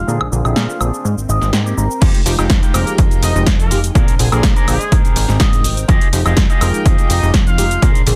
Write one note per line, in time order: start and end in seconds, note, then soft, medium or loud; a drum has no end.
0.00 0.13 F4 medium
0.00 0.13 F5 medium
0.07 0.19 A#2 medium
0.07 0.20 D3 medium
0.07 0.20 A#3 medium
0.07 0.26 C4 loud
0.07 0.21 C4 medium
0.07 0.26 D4 medium
0.07 1.04 D4 medium
0.07 0.27 G#4 loud
0.07 0.21 G#4 medium
0.07 1.04 C5 medium
0.07 1.04 G#5 medium
0.07 shaker soft
0.21 0.30 A#1 soft
0.21 high woodblock medium
0.32 0.43 A#1 medium
0.32 0.42 D3 medium
0.32 0.42 A#3 medium
0.32 0.42 C4 medium
0.32 0.42 G#4 medium
0.32 shaker medium
0.45 0.55 A#1 medium
0.45 0.78 D3 medium
0.45 0.78 A#3 medium
0.45 0.63 C4 medium
0.45 0.78 C4 medium
0.45 0.63 D4 medium
0.45 0.81 F4 medium
0.45 0.63 G#4 medium
0.45 0.78 G#4 medium
0.45 0.81 F5 medium
0.45 high woodblock medium
0.45 shaker soft
0.56 0.67 A#2 loud
0.56 snare loud
0.56 shaker soft
0.70 shaker soft
0.80 0.91 A#1 medium
0.80 0.88 D3 medium
0.80 0.88 A#3 medium
0.80 1.05 C4 medium
0.80 0.88 C4 medium
0.80 1.05 D4 medium
0.80 1.05 G#4 medium
0.80 0.89 G#4 loud
0.80 high woodblock medium
0.80 shaker medium
0.94 shaker soft
1.05 1.16 G#2 medium
1.05 2.01 C4 medium
1.05 2.01 A#4 medium
1.05 2.00 G5 medium
1.05 shaker soft
1.18 1.27 G#1 soft
1.18 shaker soft
1.29 1.40 G#1 medium
1.29 1.52 D#5 medium
1.29 shaker medium
1.41 1.51 G#1 medium
1.41 snare soft
1.41 shaker soft
1.53 1.74 G#2 medium
1.53 1.76 G5 medium
1.53 muted clean electric guitar stroke medium
1.53 snare loud
1.53 shaker soft
1.66 1.84 A#3 loud
1.66 1.84 C4 medium
1.66 1.84 G4 loud
1.66 shaker soft
1.77 1.88 G#1 medium
1.77 2.00 A#5 medium
1.77 shaker medium
1.91 shaker soft
2.01 2.12 F2 loud
2.01 2.09 F3 loud
2.01 2.20 G#3 loud
2.01 2.09 G#3 medium
2.01 3.93 G#3 medium
2.01 2.20 D#4 loud
2.01 2.09 D#4 medium
2.01 3.93 D#4 medium
2.01 2.20 F4 medium
2.01 2.20 G4 loud
2.01 2.10 G4 loud
2.01 3.93 G5 medium
2.01 kick loud
2.01 closed hi-hat medium
2.01 crash loud
2.01 shaker soft
2.14 closed hi-hat medium
2.26 2.37 F1 loud
2.26 2.33 F3 medium
2.26 2.34 G#3 medium
2.26 2.34 D#4 medium
2.26 2.34 G4 medium
2.26 open hi-hat loud
2.26 shaker medium
2.38 2.48 F1 loud
2.38 2.45 F3 medium
2.38 2.46 G#3 medium
2.38 2.50 G#3 medium
2.38 2.50 D#4 medium
2.38 2.46 D#4 medium
2.38 2.50 F4 medium
2.38 2.50 G4 loud
2.38 2.46 G4 loud
2.38 closed hi-hat soft
2.38 high woodblock medium
2.38 shaker soft
2.50 2.61 F2 loud
2.50 kick loud
2.50 snare loud
2.50 closed hi-hat medium
2.50 shaker soft
2.63 2.80 G#3 medium
2.63 2.81 D#4 medium
2.63 2.81 F4 medium
2.63 2.81 G4 loud
2.63 closed hi-hat soft
2.63 shaker soft
2.73 2.85 F1 medium
2.73 3.32 F3 medium
2.73 3.32 G#3 medium
2.73 2.94 A#3 medium
2.73 3.32 D#4 medium
2.73 3.33 G4 medium
2.73 2.94 A#4 medium
2.73 open hi-hat loud
2.73 high woodblock medium
2.73 shaker medium
2.87 closed hi-hat soft
2.87 shaker soft
2.98 3.09 F2 medium
2.98 3.47 G#3 medium
2.98 3.47 D#4 medium
2.98 3.47 F4 medium
2.98 3.47 A#4 loud
2.98 kick loud
2.98 closed hi-hat medium
2.98 shaker soft
3.11 3.20 F1 soft
3.11 closed hi-hat soft
3.11 shaker soft
3.23 3.33 F1 medium
3.23 3.42 D#4 medium
3.23 3.42 D#5 medium
3.23 open hi-hat loud
3.23 shaker medium
3.35 3.45 F1 loud
3.35 3.46 F3 medium
3.35 3.46 G#3 medium
3.35 3.47 D#4 medium
3.35 3.47 G4 medium
3.35 shaker soft
3.46 3.72 F2 medium
3.46 kick loud
3.46 snare loud
3.46 closed hi-hat medium
3.46 shaker soft
3.60 3.79 A#3 medium
3.60 3.79 A#4 loud
3.60 closed hi-hat soft
3.60 shaker soft
3.71 3.91 F1 medium
3.71 3.79 F3 medium
3.71 3.79 G#3 medium
3.71 3.79 D#4 medium
3.71 3.79 G4 loud
3.71 open hi-hat medium
3.71 shaker medium
3.84 closed hi-hat medium
3.84 shaker soft
3.95 4.06 A#2 medium
3.95 4.08 D3 medium
3.95 4.08 A#3 medium
3.95 4.14 C4 loud
3.95 4.08 C4 medium
3.95 4.14 D4 loud
3.95 4.91 D4 medium
3.95 4.08 G#4 medium
3.95 4.14 G#4 loud
3.95 4.14 A#4 loud
3.95 4.91 C5 medium
3.95 4.91 G#5 medium
3.95 kick loud
3.95 closed hi-hat medium
3.95 shaker soft
4.08 4.17 A#1 soft
4.08 closed hi-hat medium
4.08 shaker soft
4.19 4.30 A#1 loud
4.19 4.29 D3 medium
4.19 4.29 A#3 medium
4.19 4.29 C4 medium
4.19 4.29 G#4 medium
4.19 open hi-hat loud
4.19 shaker medium
4.32 4.42 A#1 loud
4.32 4.65 D3 medium
4.32 4.65 A#3 medium
4.32 4.65 C4 medium
4.32 4.43 C4 medium
4.32 4.43 D4 medium
4.32 4.44 G#4 medium
4.32 4.65 G#4 loud
4.32 4.44 A#4 loud
4.32 closed hi-hat soft
4.32 high woodblock medium
4.32 shaker soft
4.43 4.54 A#2 loud
4.43 kick loud
4.43 snare loud
4.43 closed hi-hat medium
4.43 shaker soft
4.56 4.74 C4 medium
4.56 4.74 D4 medium
4.56 4.74 G#4 medium
4.56 4.74 A#4 loud
4.56 closed hi-hat soft
4.56 shaker soft
4.67 4.78 A#1 medium
4.67 4.75 D3 loud
4.67 4.97 G#3 medium
4.67 4.76 A#3 medium
4.67 4.76 C4 medium
4.67 4.97 G#4 medium
4.67 4.76 G#4 loud
4.67 open hi-hat loud
4.67 high woodblock medium
4.67 shaker medium
4.81 closed hi-hat soft
4.81 shaker soft
4.91 5.03 G#2 medium
4.91 5.40 C4 medium
4.91 5.88 C4 medium
4.91 5.40 G4 medium
4.91 5.40 G#4 medium
4.91 5.88 A#4 medium
4.91 5.40 A#4 loud
4.91 7.79 G5 medium
4.91 kick loud
4.91 closed hi-hat medium
4.91 shaker soft
5.05 5.14 G#1 soft
5.05 closed hi-hat soft
5.05 shaker soft
5.16 5.27 G#1 medium
5.16 open hi-hat loud
5.16 shaker medium
5.28 5.38 G#1 loud
5.28 snare soft
5.28 shaker soft
5.40 5.85 D#5 medium
5.40 kick loud
5.40 snare loud
5.40 closed hi-hat medium
5.40 shaker soft
5.53 closed hi-hat soft
5.53 shaker soft
5.64 5.85 G#1 medium
5.64 open hi-hat loud
5.64 shaker medium
5.77 closed hi-hat medium
5.77 shaker soft
5.88 5.99 F2 loud
5.88 5.96 F3 loud
5.88 7.80 G#3 medium
5.88 5.97 G#3 medium
5.88 7.80 D#4 medium
5.88 5.97 D#4 medium
5.88 6.07 F4 loud
5.88 6.07 G4 loud
5.88 5.97 G4 loud
5.88 6.07 G#4 loud
5.88 6.07 D#5 loud
5.88 kick loud
5.88 closed hi-hat medium
5.88 shaker soft
6.01 closed hi-hat medium
6.13 6.24 F1 loud
6.13 6.21 F3 medium
6.13 6.21 G#3 medium
6.13 6.21 D#4 medium
6.13 6.21 G4 medium
6.13 open hi-hat loud
6.13 shaker medium
6.25 6.35 F1 loud
6.25 6.32 F3 medium
6.25 6.33 G#3 medium
6.25 6.33 D#4 medium
6.25 6.37 F4 medium
6.25 6.37 G4 medium
6.25 6.33 G4 loud
6.25 6.37 G#4 medium
6.25 6.37 D#5 loud
6.25 closed hi-hat soft
6.25 high woodblock medium
6.25 shaker soft
6.37 6.48 F2 loud
6.37 kick loud
6.37 snare loud
6.37 closed hi-hat medium
6.37 shaker soft
6.50 6.68 F4 medium
6.50 6.68 G4 medium
6.50 6.68 G#4 medium
6.50 6.68 D#5 loud
6.50 closed hi-hat soft
6.50 shaker soft
6.61 6.72 F1 medium
6.61 7.19 F3 medium
6.61 7.19 G#3 medium
6.61 6.81 A#3 medium
6.61 7.20 D#4 medium
6.61 6.81 A#4 loud
6.61 7.20 G5 medium
6.61 open hi-hat loud
6.61 high woodblock medium
6.61 shaker medium
6.74 closed hi-hat soft
6.74 shaker soft
6.85 6.96 F2 medium
6.85 7.34 F4 loud
6.85 7.34 G4 medium
6.85 7.34 G#4 medium
6.85 7.34 D#5 loud
6.85 kick loud
6.85 closed hi-hat medium
6.85 shaker soft
6.98 closed hi-hat soft
6.98 shaker soft
7.10 7.20 F1 medium
7.10 7.30 D#4 medium
7.10 7.30 D#5 medium
7.10 open hi-hat loud
7.10 shaker medium
7.22 7.32 F1 loud
7.22 7.33 F3 medium
7.22 7.34 G#3 medium
7.22 7.34 D#4 medium
7.22 7.34 G4 medium
7.22 shaker soft
7.34 7.60 F2 medium
7.34 kick loud
7.34 snare loud
7.34 closed hi-hat medium
7.34 shaker soft
7.47 7.88 F4 medium
7.47 7.88 F5 loud
7.47 closed hi-hat soft
7.47 shaker soft
7.58 7.79 F1 medium
7.58 7.66 F3 medium
7.58 7.66 G#3 medium
7.58 7.66 D#4 medium
7.58 7.66 G4 loud
7.58 open hi-hat loud
7.58 shaker medium
7.71 closed hi-hat medium
7.71 shaker soft
7.82 7.93 A#2 loud
7.82 7.95 D3 medium
7.82 7.95 A#3 medium
7.82 7.95 C4 medium
7.82 8.01 D4 loud
7.82 8.15 D4 medium
7.82 8.01 G#4 loud
7.82 7.95 G#4 medium
7.82 8.01 A#4 loud
7.82 8.01 C5 loud
7.82 8.15 C5 medium
7.82 8.15 G#5 medium
7.82 kick loud
7.82 closed hi-hat medium
7.82 shaker soft
7.95 8.04 A#1 soft
7.95 closed hi-hat medium
7.95 shaker soft
8.06 8.15 A#1 loud
8.06 8.15 D3 medium
8.06 8.15 A#3 medium
8.06 8.15 C4 medium
8.06 8.15 G#4 medium
8.06 open hi-hat loud
8.06 shaker medium